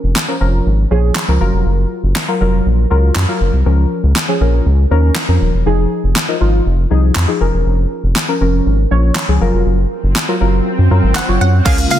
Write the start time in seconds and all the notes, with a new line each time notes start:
Already playing: F3 C#4 A#4
0.03 F1
0.16 snare, clap
0.28 F3 C#4 A#4
0.41 F1 F3 C#4 A#4
0.66 G#1
0.91 A#1 F3 C#4 G#4
1.15 snare, clap
1.28 C#2 F3 C#4 A#4
1.40 F#1 F#3 F4 A#4
1.53 F1
1.65 F#1
2.03 F#1
2.16 snare, clap
2.28 F#3 F4 A#4
2.41 F1 F#3 F4 A#4
2.66 A#1
2.90 C#2 F#3 F4 A#4
3.15 F#2, snare, clap
3.28 F#3 F4 A#4
3.41 F#1
3.53 C2
3.66 C#2 F3 C#4 A#4
4.03 C#2
4.16 snare, clap
4.28 F3 C#4 G#4
4.41 A#1 F3 C#4 A#4
4.66 C#2
4.91 D#2 F3 C#4 A#4
5.15 snare, clap
5.28 F2 F3 C#4 A#4
5.41 D#1
5.54 E1
5.66 F1 F3 D#4 G#4
6.04 F1
6.16 snare, clap
6.28 F3 D#4 A#4
6.40 G#1 F3 D#4 F4
6.66 F1
6.90 C2 F3 D#4 G#4
7.15 F2, snare, clap
7.28 F3 D#4 G#4
7.40 F1 F3 C#4 A#4
7.54 E1
7.66 F1
8.03 F1
8.16 snare, clap
8.28 F3 C#4 A#4
8.41 F1 F3 C#4 A#4
8.66 G#1
8.91 A#1 F3 C#4 C#5
9.15 snare, clap
9.28 C#2 F3 C#4 G#4
9.41 F#1 F#3 F4 A#4
9.53 F1
9.66 F#1, swell
10.03 F#1
10.16 snare, clap
10.28 F#3 F4 A#4
10.41 F#1 F#3 F4 A#4
10.79 F#2
10.91 F#2 F#3 F4 A#4
11.03 G#1
11.15 F#1 F#5, snare, clap
11.28 F#1 F#3 F4 C#5
11.41 F#2 F#5
11.65 C#2 C#3 F3 G#3 A#3 C#4 F4 G#4 A#4 F5, kick, closed hi-hat, crash, shaker
11.78 muted clean electric guitar stroke, closed hi-hat, shaker
11.90 F5, muted clean electric guitar stroke, open hi-hat, shaker